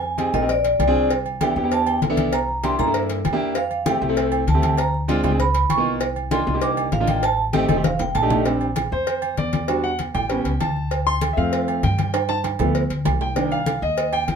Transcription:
Already playing: upright bass F2, vibraphone G#5
0.03 high conga
0.18 grand piano C4 D#4 G4 G#4, cowbell, high conga, low agogo
0.33 upright bass A#1, grand piano C4 D#4 G4 A#4, vibraphone D#5, high conga, low conga, low agogo
0.42 grand piano C4 D#4 G4 A#4
0.49 vibraphone D5, cowbell, high conga
0.64 cowbell, high conga
0.79 upright bass C2, cowbell, high conga, low timbale, low agogo
0.87 grand piano C4 D4 F4 G#4
0.95 high conga
1.10 cowbell, high conga, low agogo
1.26 high conga, low agogo
1.41 grand piano B3 D4 E4 G4, vibraphone G5, cowbell, high conga, low agogo
1.56 upright bass E2, grand piano B3 D4 E4 G4, high conga
1.64 grand piano B3 D4 E4 G4
1.71 vibraphone A5, cowbell, high conga, low agogo
1.87 vibraphone G5, high conga, low agogo
2.02 upright bass C2, cowbell, high conga, low timbale
2.10 grand piano B3 D4 E4 A4
2.17 cowbell, high conga, low agogo
2.32 vibraphone A#5, cowbell, high conga, low agogo
2.49 high conga
2.63 grand piano A#3 D4 E4 G4, vibraphone C6, cowbell, high conga, low agogo
2.79 upright bass G2, grand piano A#3 D4 E4 A#4, vibraphone A#5, high conga, low conga, low agogo
2.86 grand piano A#3 D4 E4 A4
2.94 cowbell, high conga
3.10 cowbell, high conga
3.25 upright bass F2, cowbell, high conga, low timbale, low agogo
3.33 grand piano A#3 D4 E4 G4
3.40 high conga
3.55 vibraphone F5, cowbell, high conga, low agogo
3.71 high conga, low agogo
3.86 grand piano A3 C4 E4 G4, vibraphone G5, cowbell, high conga, low agogo
4.01 upright bass C2, grand piano A3 C4 E4 G4, high conga
4.09 grand piano A3 C4 E4 A4
4.17 cowbell, high conga, low agogo
4.32 high conga, low agogo
4.47 upright bass D2, vibraphone A5, cowbell, high conga
4.54 grand piano A3 C4 E4 G4
4.62 cowbell, high conga, low agogo
4.78 vibraphone A#5, cowbell, high conga, low agogo
4.94 high conga
5.08 grand piano G#3 C4 D4 F4, cowbell, high conga, low agogo
5.24 upright bass C#2, grand piano G#3 C4 D4 F4, high conga, low conga, low agogo
5.32 grand piano G#3 C4 D4 G#4
5.40 vibraphone B5, cowbell, high conga, low conga
5.55 cowbell, high conga
5.70 upright bass C2, vibraphone C#6, cowbell, high conga, low agogo
5.77 grand piano A#3 B3 D#4 F4
5.85 high conga
6.00 cowbell, high conga, low agogo
6.16 high conga, low agogo
6.31 grand piano A#3 D4 D#4 F4, vibraphone C6, cowbell, high conga, low agogo
6.46 upright bass C2, grand piano A#3 D4 D#4 F4, high conga
6.54 grand piano A#3 D4 D#4 G4
6.62 vibraphone D6, cowbell, high conga, low agogo
6.77 high conga, low agogo
6.92 upright bass A1, vibraphone F5, cowbell, high conga, low timbale
7.00 grand piano A#3 D4 D#4 F4
7.07 vibraphone G5, cowbell, high conga, low agogo
7.23 vibraphone A5, cowbell, low agogo
7.38 high conga
7.53 grand piano A3 C4 D#4 G4, cowbell, high conga, low agogo
7.68 upright bass F1, grand piano A3 C4 D#4 A4, high conga, low agogo
7.76 grand piano A3 C4 D#4 G4
7.84 vibraphone F5, cowbell, high conga, high timbale
7.99 vibraphone G5, cowbell, low conga
8.15 upright bass A#1, vibraphone A5, cowbell, low conga, low agogo
8.22 grand piano A3 D4 D#4 G4
8.30 low conga, low timbale
8.46 grand piano G3 C4 D4, cowbell, high conga, low agogo
8.61 high conga, low agogo
8.76 cowbell, high conga, low agogo
8.92 upright bass F2, grand piano C5, high conga
9.07 cowbell, high conga, low agogo
9.22 high conga, low agogo
9.37 upright bass E2, grand piano D5, cowbell, high conga
9.53 cowbell, high conga, low agogo
9.68 grand piano G3 D4 F#4, cowbell, high conga, low agogo
9.84 grand piano F#5, high conga
9.99 cowbell, high conga, low agogo
10.14 upright bass A1, grand piano G5, high conga, low conga, low agogo
10.30 grand piano G3 B3 C#4, cowbell, high conga
10.45 upright bass C#2, cowbell, high conga
10.60 upright bass D2, grand piano A5, cowbell, high conga, low agogo
10.76 high conga
10.91 cowbell, high conga, low agogo
11.06 grand piano C6, high conga, low agogo
11.21 cowbell, high conga, low agogo
11.33 grand piano F3 E5, high conga
11.37 upright bass F2, grand piano A3 C4 F5
11.53 cowbell, high conga, low agogo
11.68 high conga, low agogo
11.83 upright bass G2, grand piano G5, cowbell, high conga
11.98 cowbell, high conga, low agogo
12.14 cowbell, high conga, high timbale, low agogo
12.29 grand piano A5, high conga, high timbale
12.44 cowbell, high conga, high timbale, low agogo
12.59 upright bass D2, grand piano F3 A3 B3, high conga, low conga, low timbale, low agogo
12.75 cowbell, high conga
12.90 upright bass D2, cowbell, high conga
13.05 upright bass C2, cowbell, high conga, low timbale, low agogo
13.21 grand piano G5, high conga, low timbale
13.36 grand piano D#3 A#3 D4, cowbell, high conga, low agogo
13.51 grand piano F5, high conga, low agogo
13.66 cowbell, high conga, low agogo
13.82 upright bass D#2, grand piano D#5, high conga
13.97 cowbell, high conga, low agogo
14.12 grand piano G5, high conga, low agogo
14.28 upright bass F2, cowbell, high conga

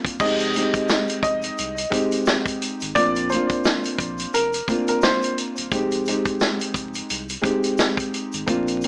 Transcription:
Already playing: grand piano A#3 C4 D4 F4
0.05 sub bass D#1, kick, closed hi-hat
0.20 sub bass F1, grand piano G#3 C4 D#4 G4, upright piano D#5, kick, crash, shaker
0.40 closed hi-hat, shaker
0.54 grand piano G#3 C4 D#4 G4, closed hi-hat, shaker
0.74 kick, closed hi-hat, shaker
0.89 snare, shaker
1.08 closed hi-hat, shaker
1.23 sub bass F1, upright piano D#5, kick, closed hi-hat, shaker
1.42 closed hi-hat, shaker
1.58 sub bass C2, closed hi-hat, shaker
1.77 closed hi-hat, shaker
1.90 grand piano G#3 C4 D#4 G4, kick, closed hi-hat, shaker
2.11 closed hi-hat, shaker
2.26 snare, shaker
2.46 kick, closed hi-hat, shaker
2.62 closed hi-hat, shaker
2.80 sub bass G#1, closed hi-hat, shaker
2.95 sub bass A#1, grand piano A#3 C4 D4 F4, upright piano D5, kick, closed hi-hat, shaker
3.15 closed hi-hat, shaker
3.29 grand piano A#3 C4, upright piano C5, closed hi-hat, shaker
3.34 grand piano D4 F4
3.49 kick, closed hi-hat, shaker
3.64 snare, shaker
3.84 closed hi-hat, shaker
3.99 sub bass A#1, kick, closed hi-hat, shaker
4.18 closed hi-hat, shaker
4.34 sub bass F1, upright piano A#4, closed hi-hat, shaker
4.53 closed hi-hat, shaker
4.68 grand piano A#3 C4 D4 F4, kick, closed hi-hat, shaker
4.87 upright piano A#4, closed hi-hat, shaker
5.02 upright piano C5, snare, shaker
5.22 closed hi-hat, shaker
5.38 closed hi-hat, shaker
5.56 sub bass D#1, closed hi-hat, shaker
5.72 sub bass F1, grand piano G#3 C4 D#4 G4, kick, closed hi-hat, shaker
5.91 closed hi-hat, shaker
6.05 grand piano G#3 C4 D#4 G4, closed hi-hat, shaker
6.25 kick, closed hi-hat, shaker
6.40 snare, shaker
6.59 closed hi-hat, shaker
6.74 sub bass F1, kick, closed hi-hat, shaker
6.94 closed hi-hat, shaker
7.10 sub bass C2, closed hi-hat, shaker
7.29 closed hi-hat, shaker
7.42 grand piano G#3 C4 D#4 G4, kick, closed hi-hat, shaker
7.63 closed hi-hat, shaker
7.78 snare, shaker
7.97 kick, closed hi-hat, shaker
8.14 closed hi-hat, shaker
8.32 sub bass G#1, closed hi-hat, shaker
8.46 sub bass A#1, grand piano A#3 C4 D4 F4, kick, closed hi-hat, shaker
8.67 closed hi-hat, shaker
8.81 grand piano A#3, closed hi-hat, shaker

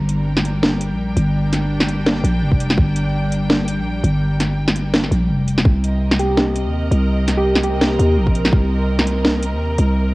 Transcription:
Already playing: 808-style bass G1, string section G3 C4 A#4
0.07 string section D4, closed hi-hat
0.20 string section G5
0.37 snare
0.45 closed hi-hat
0.63 snare
0.81 closed hi-hat
0.90 808-style bass A#1
1.17 808-style bass G1, closed hi-hat
1.53 snare, closed hi-hat
1.80 snare
1.89 closed hi-hat
2.07 snare
2.24 808-style bass A#1, closed hi-hat
2.42 808-style bass F1
2.52 kick
2.60 closed hi-hat
2.70 snare
2.78 808-style bass G1, kick
2.96 closed hi-hat
3.32 closed hi-hat
3.50 snare
3.68 closed hi-hat
3.78 808-style bass A#1
4.04 808-style bass G1, closed hi-hat
4.40 snare, closed hi-hat
4.68 snare, closed hi-hat
4.76 closed hi-hat
4.94 snare
5.04 snare
5.11 808-style bass A#1, closed hi-hat
5.29 808-style bass F1
5.48 closed hi-hat
5.58 snare
5.65 808-style bass C2, string section C3, synth texture A#4, kick
5.82 string section C4 A#4 D#5, closed hi-hat
6.12 snare
6.20 soft synth lead G4, closed hi-hat
6.38 snare
6.56 closed hi-hat
6.65 808-style bass D#2
6.91 808-style bass C2, closed hi-hat
7.28 snare, closed hi-hat
7.37 soft synth lead G4
7.55 snare
7.63 soft synth lead G4, closed hi-hat
7.81 snare
7.99 808-style bass D#2, closed hi-hat
8.17 808-style bass A#1
8.27 kick
8.35 closed hi-hat
8.45 snare
8.53 808-style bass C2, kick
8.99 snare
9.07 closed hi-hat
9.25 snare
9.43 closed hi-hat
9.52 808-style bass D#2
9.78 808-style bass C2, closed hi-hat

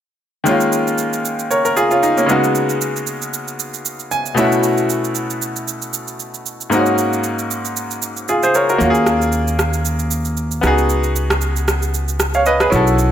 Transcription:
0.44 grand piano D#3 G#3 A#3, shaker
0.48 grand piano C#4 F4
0.60 shaker
0.72 shaker
0.87 shaker
0.98 shaker
1.13 shaker
1.25 shaker
1.39 shaker
1.51 grand piano A#4 C#5, shaker
1.65 grand piano A#4, shaker
1.77 grand piano F4 G#4, shaker
1.91 grand piano C#4 F4, shaker
2.03 grand piano D#4, shaker
2.17 grand piano A#3 C#4, shaker
2.26 grand piano C#3 G#3 B3, shaker
2.30 grand piano D#4 F#4
2.44 shaker
2.55 shaker
2.69 shaker
2.81 shaker
2.96 shaker
3.07 shaker
3.22 shaker
3.34 shaker
3.48 shaker
3.60 shaker
3.74 shaker
3.85 shaker
3.99 shaker
4.11 grand piano G#5, shaker
4.26 shaker
4.35 grand piano B2 A3 C#4 E5, shaker
4.39 grand piano E4 F#4
4.52 shaker
4.63 shaker
4.78 shaker
4.90 shaker
5.04 shaker
5.15 shaker
5.30 shaker
5.42 shaker
5.56 shaker
5.68 shaker
5.82 shaker
5.93 shaker
6.08 shaker
6.20 shaker
6.34 shaker
6.46 shaker
6.61 shaker
6.70 grand piano G#2 A#3 C4, shaker
6.74 grand piano D#4 F#4
6.79 grand piano C#4
6.86 shaker
6.98 shaker
7.13 shaker
7.24 shaker
7.39 shaker
7.51 shaker
7.65 shaker
7.77 shaker
7.91 shaker
8.02 shaker
8.17 shaker
8.28 grand piano F4 G#4, shaker
8.43 grand piano G#4 C5, shaker
8.55 grand piano A#4 C#5, shaker
8.69 grand piano F#4 A#4, shaker
8.78 upright bass D#2, grand piano A#3 C#4 F4, shaker
8.84 grand piano F#4
8.90 grand piano G#4
8.95 shaker
9.06 cross-stick, shaker
9.22 shaker
9.32 shaker
9.48 shaker
9.59 cross-stick, shaker
9.73 shaker
9.85 shaker
9.99 shaker
10.11 shaker
10.25 shaker
10.37 shaker
10.51 shaker
10.61 upright bass C#2, grand piano B3 D#4 F#4, cross-stick, shaker
10.67 grand piano G#4
10.78 shaker
10.90 shaker
11.04 shaker
11.16 shaker
11.30 cross-stick, shaker
11.41 shaker
11.56 shaker
11.68 cross-stick, shaker
11.82 shaker
11.94 shaker
12.08 shaker
12.20 cross-stick, shaker
12.34 grand piano C#5 F5, shaker
12.46 grand piano B4 D#5, shaker
12.60 grand piano G#4 B4, cross-stick, shaker
12.70 upright bass B1, grand piano C#4 E4 F#4, shaker
12.75 grand piano A4
12.87 shaker
12.99 shaker

